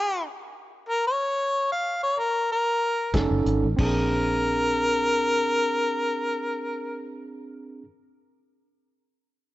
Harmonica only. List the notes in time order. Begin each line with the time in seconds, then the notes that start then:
Already playing: G#4
0.89 A#4
1.07 C#5
1.72 F5
2.03 C#5
2.19 A#4
2.52 A#4
3.81 A#4